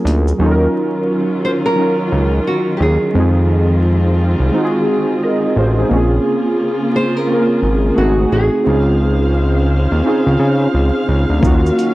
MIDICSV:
0, 0, Header, 1, 6, 480
1, 0, Start_track
1, 0, Tempo, 689655
1, 272, Time_signature, 4, 2, 24, 8
1, 8311, End_track
2, 0, Start_track
2, 0, Title_t, "Nylon-string guitar"
2, 0, Program_c, 0, 24
2, 1007, Note_on_c, 0, 72, 97
2, 1045, Note_off_c, 0, 72, 0
2, 1153, Note_on_c, 0, 70, 95
2, 1691, Note_off_c, 0, 70, 0
2, 1722, Note_on_c, 0, 66, 85
2, 1906, Note_off_c, 0, 66, 0
2, 1928, Note_on_c, 0, 67, 60
2, 1959, Note_off_c, 0, 67, 0
2, 1964, Note_on_c, 0, 68, 84
2, 3370, Note_off_c, 0, 68, 0
2, 4843, Note_on_c, 0, 72, 112
2, 4987, Note_off_c, 0, 72, 0
2, 4987, Note_on_c, 0, 70, 94
2, 5553, Note_on_c, 0, 66, 90
2, 5573, Note_off_c, 0, 70, 0
2, 5790, Note_off_c, 0, 66, 0
2, 5793, Note_on_c, 0, 68, 82
2, 7205, Note_off_c, 0, 68, 0
2, 8311, End_track
3, 0, Start_track
3, 0, Title_t, "Synth keys"
3, 0, Program_c, 1, 88
3, 0, Control_c, 1, 64, 127
3, 0, Note_on_c, 1, 54, 89
3, 0, Note_on_c, 1, 58, 79
3, 0, Note_on_c, 1, 61, 77
3, 0, Note_on_c, 1, 65, 77
3, 0, Note_on_c, 1, 68, 96
3, 0, Note_on_c, 1, 70, 92
3, 265, Note_off_c, 1, 54, 0
3, 265, Note_on_c, 1, 54, 85
3, 277, Note_off_c, 1, 61, 0
3, 277, Note_on_c, 1, 61, 78
3, 281, Control_c, 1, 64, 0
3, 283, Note_off_c, 1, 58, 0
3, 283, Note_off_c, 1, 68, 0
3, 285, Note_off_c, 1, 70, 0
3, 286, Note_off_c, 1, 65, 0
3, 287, Note_on_c, 1, 63, 79
3, 297, Note_on_c, 1, 65, 72
3, 307, Note_on_c, 1, 69, 67
3, 346, Note_off_c, 1, 69, 0
3, 353, Note_on_c, 1, 70, 89
3, 397, Control_c, 1, 64, 127
3, 1153, Note_off_c, 1, 54, 0
3, 1159, Note_off_c, 1, 61, 0
3, 1164, Note_off_c, 1, 63, 0
3, 1169, Note_off_c, 1, 65, 0
3, 1197, Note_off_c, 1, 70, 0
3, 1221, Note_on_c, 1, 54, 74
3, 1232, Note_on_c, 1, 61, 66
3, 1242, Note_on_c, 1, 63, 62
3, 1256, Note_on_c, 1, 65, 64
3, 1264, Note_on_c, 1, 70, 79
3, 2111, Note_off_c, 1, 54, 0
3, 2117, Note_off_c, 1, 61, 0
3, 2122, Note_off_c, 1, 63, 0
3, 2129, Note_off_c, 1, 65, 0
3, 2133, Note_off_c, 1, 70, 0
3, 2183, Note_on_c, 1, 56, 69
3, 2195, Note_on_c, 1, 60, 65
3, 2202, Control_c, 1, 64, 0
3, 2207, Note_on_c, 1, 63, 65
3, 2218, Note_on_c, 1, 65, 64
3, 2227, Note_on_c, 1, 68, 77
3, 2340, Control_c, 1, 64, 127
3, 3072, Note_off_c, 1, 56, 0
3, 3078, Note_off_c, 1, 60, 0
3, 3084, Note_off_c, 1, 63, 0
3, 3089, Note_off_c, 1, 65, 0
3, 3094, Note_off_c, 1, 68, 0
3, 3144, Note_on_c, 1, 56, 81
3, 3156, Note_on_c, 1, 60, 75
3, 3163, Note_on_c, 1, 63, 77
3, 3174, Note_on_c, 1, 65, 72
3, 3185, Note_on_c, 1, 66, 72
3, 3224, Note_off_c, 1, 66, 0
3, 3232, Note_on_c, 1, 68, 96
3, 3638, Note_off_c, 1, 63, 0
3, 3641, Note_on_c, 1, 75, 67
3, 3643, Note_off_c, 1, 65, 0
3, 3648, Note_on_c, 1, 70, 55
3, 3672, Note_off_c, 1, 68, 0
3, 3865, Note_off_c, 1, 75, 0
3, 3869, Note_off_c, 1, 70, 0
3, 3885, Note_on_c, 1, 72, 70
3, 3888, Note_on_c, 1, 65, 60
3, 4019, Note_off_c, 1, 72, 0
3, 4021, Note_off_c, 1, 65, 0
3, 4027, Note_on_c, 1, 68, 66
3, 4031, Note_on_c, 1, 63, 55
3, 4033, Note_off_c, 1, 56, 0
3, 4038, Note_off_c, 1, 60, 0
3, 4100, Note_on_c, 1, 58, 83
3, 4114, Note_on_c, 1, 60, 72
3, 4120, Control_c, 1, 64, 0
3, 4122, Note_on_c, 1, 61, 79
3, 4132, Note_on_c, 1, 65, 76
3, 4137, Note_off_c, 1, 68, 0
3, 4146, Note_on_c, 1, 68, 91
3, 4254, Note_off_c, 1, 63, 0
3, 4255, Control_c, 1, 64, 127
3, 4990, Note_off_c, 1, 58, 0
3, 4997, Note_off_c, 1, 60, 0
3, 5002, Note_off_c, 1, 61, 0
3, 5007, Note_off_c, 1, 65, 0
3, 5013, Note_off_c, 1, 68, 0
3, 5059, Note_on_c, 1, 58, 72
3, 5070, Note_on_c, 1, 60, 66
3, 5082, Note_on_c, 1, 61, 66
3, 5092, Note_on_c, 1, 65, 62
3, 5103, Note_on_c, 1, 70, 77
3, 5537, Note_on_c, 1, 57, 78
3, 5541, Note_off_c, 1, 60, 0
3, 5546, Note_off_c, 1, 58, 0
3, 5550, Note_on_c, 1, 60, 71
3, 5557, Note_off_c, 1, 61, 0
3, 5561, Control_c, 1, 64, 0
3, 5562, Note_off_c, 1, 65, 0
3, 5562, Note_on_c, 1, 63, 72
3, 5568, Note_off_c, 1, 70, 0
3, 5570, Note_on_c, 1, 66, 73
3, 5582, Note_on_c, 1, 68, 88
3, 5673, Control_c, 1, 64, 127
3, 5987, Note_off_c, 1, 57, 0
3, 5993, Note_off_c, 1, 60, 0
3, 6000, Note_off_c, 1, 63, 0
3, 6003, Note_off_c, 1, 66, 0
3, 6010, Note_off_c, 1, 68, 0
3, 6014, Note_on_c, 1, 60, 70
3, 6027, Note_on_c, 1, 61, 63
3, 6036, Note_on_c, 1, 63, 65
3, 6041, Control_c, 1, 64, 0
3, 6047, Note_on_c, 1, 65, 62
3, 6059, Note_on_c, 1, 68, 76
3, 6150, Control_c, 1, 64, 127
3, 6908, Note_off_c, 1, 60, 0
3, 6914, Note_off_c, 1, 61, 0
3, 6918, Note_off_c, 1, 63, 0
3, 6924, Note_off_c, 1, 65, 0
3, 6930, Note_off_c, 1, 68, 0
3, 6978, Note_on_c, 1, 60, 80
3, 6988, Note_on_c, 1, 61, 73
3, 7001, Note_on_c, 1, 63, 77
3, 7009, Note_on_c, 1, 65, 74
3, 7018, Note_on_c, 1, 68, 89
3, 7869, Note_off_c, 1, 60, 0
3, 7875, Note_off_c, 1, 61, 0
3, 7881, Note_off_c, 1, 63, 0
3, 7885, Note_off_c, 1, 65, 0
3, 7890, Note_off_c, 1, 68, 0
3, 7936, Note_on_c, 1, 58, 84
3, 7947, Note_on_c, 1, 61, 74
3, 7958, Note_on_c, 1, 63, 71
3, 7963, Control_c, 1, 64, 0
3, 7969, Note_on_c, 1, 65, 78
3, 7979, Note_on_c, 1, 66, 91
3, 8072, Control_c, 1, 64, 127
3, 8311, Note_off_c, 1, 58, 0
3, 8311, Note_off_c, 1, 61, 0
3, 8311, Note_off_c, 1, 63, 0
3, 8311, Note_off_c, 1, 65, 0
3, 8311, Note_off_c, 1, 66, 0
3, 8311, End_track
4, 0, Start_track
4, 0, Title_t, "String section"
4, 0, Program_c, 2, 48
4, 277, Note_on_c, 2, 51, 82
4, 280, Note_on_c, 2, 61, 78
4, 281, Note_on_c, 2, 54, 75
4, 281, Note_on_c, 2, 65, 91
4, 2177, Note_off_c, 2, 61, 0
4, 2178, Note_off_c, 2, 54, 0
4, 2178, Note_off_c, 2, 65, 0
4, 2199, Note_on_c, 2, 65, 88
4, 2199, Note_on_c, 2, 68, 74
4, 2201, Note_on_c, 2, 60, 73
4, 4087, Note_off_c, 2, 51, 0
4, 4096, Note_off_c, 2, 65, 0
4, 4098, Note_off_c, 2, 60, 0
4, 4111, Note_on_c, 2, 49, 80
4, 4112, Note_on_c, 2, 58, 78
4, 4112, Note_on_c, 2, 65, 95
4, 5538, Note_off_c, 2, 58, 0
4, 5538, Note_off_c, 2, 65, 0
4, 5549, Note_on_c, 2, 57, 69
4, 5549, Note_on_c, 2, 66, 74
4, 6013, Note_off_c, 2, 49, 0
4, 6026, Note_off_c, 2, 57, 0
4, 6026, Note_off_c, 2, 66, 0
4, 6030, Note_on_c, 2, 77, 88
4, 6034, Note_on_c, 2, 49, 77
4, 6035, Note_on_c, 2, 72, 71
4, 7928, Note_off_c, 2, 68, 0
4, 7934, Note_off_c, 2, 49, 0
4, 7935, Note_off_c, 2, 72, 0
4, 7957, Note_on_c, 2, 54, 77
4, 7958, Note_on_c, 2, 51, 76
4, 7959, Note_on_c, 2, 61, 73
4, 8311, Note_off_c, 2, 51, 0
4, 8311, Note_off_c, 2, 54, 0
4, 8311, Note_off_c, 2, 61, 0
4, 8311, Note_off_c, 2, 77, 0
4, 8311, End_track
5, 0, Start_track
5, 0, Title_t, "Analog synth bass"
5, 0, Program_c, 3, 38
5, 33, Note_on_c, 3, 38, 89
5, 230, Note_off_c, 3, 38, 0
5, 275, Note_on_c, 3, 39, 96
5, 471, Note_off_c, 3, 39, 0
5, 1477, Note_on_c, 3, 37, 85
5, 1672, Note_off_c, 3, 37, 0
5, 1951, Note_on_c, 3, 39, 97
5, 2073, Note_off_c, 3, 39, 0
5, 2191, Note_on_c, 3, 41, 104
5, 3032, Note_off_c, 3, 41, 0
5, 3060, Note_on_c, 3, 36, 88
5, 3136, Note_off_c, 3, 36, 0
5, 3872, Note_on_c, 3, 33, 97
5, 4069, Note_off_c, 3, 33, 0
5, 4111, Note_on_c, 3, 34, 106
5, 4309, Note_off_c, 3, 34, 0
5, 5307, Note_on_c, 3, 32, 84
5, 5507, Note_off_c, 3, 32, 0
5, 5551, Note_on_c, 3, 32, 113
5, 5749, Note_off_c, 3, 32, 0
5, 5791, Note_on_c, 3, 33, 87
5, 5913, Note_off_c, 3, 33, 0
5, 6031, Note_on_c, 3, 37, 99
5, 6872, Note_off_c, 3, 37, 0
5, 6902, Note_on_c, 3, 39, 81
5, 6977, Note_off_c, 3, 39, 0
5, 7144, Note_on_c, 3, 37, 93
5, 7218, Note_off_c, 3, 37, 0
5, 7235, Note_on_c, 3, 49, 98
5, 7431, Note_off_c, 3, 49, 0
5, 7476, Note_on_c, 3, 37, 88
5, 7596, Note_off_c, 3, 37, 0
5, 7715, Note_on_c, 3, 37, 97
5, 7836, Note_off_c, 3, 37, 0
5, 7863, Note_on_c, 3, 38, 80
5, 7938, Note_off_c, 3, 38, 0
5, 7955, Note_on_c, 3, 39, 99
5, 8151, Note_off_c, 3, 39, 0
5, 8311, End_track
6, 0, Start_track
6, 0, Title_t, "Drums"
6, 48, Note_on_c, 9, 42, 64
6, 48, Note_on_c, 9, 82, 49
6, 117, Note_off_c, 9, 42, 0
6, 117, Note_off_c, 9, 82, 0
6, 192, Note_on_c, 9, 82, 41
6, 262, Note_off_c, 9, 82, 0
6, 7954, Note_on_c, 9, 36, 125
6, 7963, Note_on_c, 9, 82, 77
6, 8023, Note_off_c, 9, 36, 0
6, 8033, Note_off_c, 9, 82, 0
6, 8118, Note_on_c, 9, 82, 55
6, 8187, Note_off_c, 9, 82, 0
6, 8204, Note_on_c, 9, 42, 64
6, 8204, Note_on_c, 9, 82, 43
6, 8274, Note_off_c, 9, 42, 0
6, 8274, Note_off_c, 9, 82, 0
6, 8311, End_track
0, 0, End_of_file